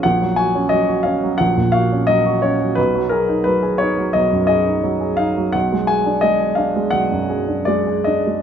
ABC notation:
X:1
M:4/4
L:1/16
Q:1/4=87
K:G#dor
V:1 name="Grand piano"
f2 g2 d2 e2 f2 e2 d2 c2 | B2 A2 B2 c2 d2 d4 e2 | f2 g2 d2 e2 f4 =d2 ^d2 |]
V:2 name="Grand piano"
A,,, F, F C F, F C F, A,,, A,, F C F, F C F, | B,,, F, G D F, G D F, B,,, F,, G D F, G D F, | B,,, G, G =D G, G D G, B,,, F,, G D G, G D G, |]